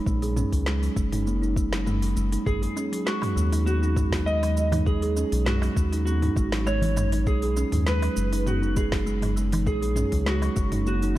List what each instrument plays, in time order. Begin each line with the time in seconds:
0.06 analog synth bass A#1, kalimba G#3, kick, cabasa
0.22 kalimba G#4, open hi-hat, cabasa
0.37 kalimba C#4, mid tom, cabasa
0.52 analog synth bass C#2, kalimba F#3, kick, open hi-hat, cabasa
0.66 kalimba G#3, snare, cabasa
0.82 kalimba F#3, open hi-hat, cabasa
0.96 analog synth bass F#1, kalimba G#3, kick, cabasa
1.12 kalimba D#4, mid tom, open hi-hat, cabasa
1.27 kalimba A#3, cabasa
1.42 kalimba D#4, cabasa
1.56 kalimba G#3, kick, cabasa
1.72 kalimba F#3, snare, open hi-hat, cabasa
1.87 kalimba G#3, mid tom, cabasa
2.02 kalimba F#3, open hi-hat, cabasa
2.16 analog synth bass F#1, kalimba G#3, cabasa
2.32 kalimba D#4, open hi-hat, cabasa
2.46 analog synth bass G#1, kalimba G#3, electric slide guitar G#4, kick, mid tom, cabasa
2.62 kalimba G#4, open hi-hat, cabasa
2.76 kalimba C#4, darbuka ka, cabasa
2.92 kalimba F#3, open hi-hat, cabasa
3.06 kalimba G#3, electric slide guitar F#4, snare, cabasa
3.22 kalimba F#3, mid tom, open hi-hat, darbuka ka, darbuka tek, cabasa
3.36 analog synth bass D#2, kalimba G#3, cabasa
3.52 kalimba D#4, open hi-hat, darbuka ka, cabasa
3.66 kalimba B3, electric slide guitar F#4, cabasa
3.82 kalimba D#4, cabasa
3.96 kalimba G#3, kick, mid tom, darbuka ka, cabasa
4.12 kalimba F#3, kick, snare, open hi-hat, cabasa
4.26 kalimba G#3, electric slide guitar D#5, cabasa
4.43 kalimba F#3, open hi-hat, darbuka tek, cabasa
4.57 kalimba G#3, darbuka ka, cabasa
4.72 kalimba D#4, mid tom, open hi-hat, darbuka tek, darbuka dum, cabasa
4.86 kalimba G#3, electric slide guitar G#4, kick, cabasa
5.02 kalimba G#4, open hi-hat, cabasa
5.16 kalimba C#4, darbuka ka, cabasa
5.32 analog synth bass B1, kalimba F#3, open hi-hat, cabasa
5.46 kalimba G#3, electric slide guitar F#4, snare, mid tom, cabasa
5.62 kalimba F#3, open hi-hat, darbuka ka, darbuka tek, cabasa
5.76 analog synth bass D#2, kalimba G#3, kick, cabasa
5.92 kalimba D#4, open hi-hat, darbuka ka, cabasa
6.05 kalimba B3, electric slide guitar F#4, cabasa
6.22 kalimba D#4, mid tom, open hi-hat, cabasa
6.36 analog synth bass G#1, kalimba G#3, kick, darbuka ka, cabasa
6.52 kalimba F#3, snare, open hi-hat, cabasa
6.67 kalimba G#3, electric slide guitar C#5, darbuka tek, cabasa
6.82 kalimba F#3, open hi-hat, darbuka dum, cabasa
6.96 kalimba G#3, mid tom, darbuka tek, cabasa
7.12 kalimba D#4, open hi-hat, darbuka ka, cabasa
7.27 analog synth bass B1, kalimba G#3, electric slide guitar G#4, kick, cabasa
7.42 kalimba G#4, open hi-hat, cabasa
7.56 kalimba C#4, darbuka ka, cabasa
7.72 analog synth bass D#2, kalimba F#3, mid tom, open hi-hat, cabasa
7.87 kalimba G#3, electric slide guitar B4, snare, cabasa
8.02 kalimba F#3, open hi-hat, darbuka ka, darbuka tek, cabasa
8.16 analog synth bass F#1, kalimba G#3, cabasa
8.32 kalimba D#4, open hi-hat, darbuka ka, cabasa
8.46 kalimba B3, electric slide guitar F#4, mid tom, cabasa
8.62 kalimba D#4, cabasa
8.76 kalimba G#3, electric slide guitar G#4, kick, darbuka ka, cabasa
8.92 kalimba F#3, kick, snare, open hi-hat, cabasa
9.06 kalimba G#3, cabasa
9.22 kalimba F#3, mid tom, open hi-hat, darbuka tek, cabasa
9.36 kalimba G#3, darbuka ka, cabasa
9.52 kalimba D#4, open hi-hat, darbuka tek, darbuka dum, cabasa
9.66 analog synth bass A#1, kalimba G#3, electric slide guitar G#4, kick, cabasa
9.82 kalimba G#4, open hi-hat, cabasa
9.96 kalimba C#4, mid tom, darbuka ka, cabasa
10.12 analog synth bass C#2, kalimba F#3, kick, open hi-hat, cabasa
10.26 kalimba G#3, electric slide guitar F#4, snare, cabasa
10.42 kalimba F#3, open hi-hat, darbuka ka, darbuka tek, cabasa
10.56 analog synth bass F#1, kalimba G#3, kick, cabasa
10.72 kalimba D#4, mid tom, open hi-hat, darbuka ka, cabasa
10.86 kalimba A#3, electric slide guitar F#4, cabasa
11.02 kalimba D#4, open hi-hat, cabasa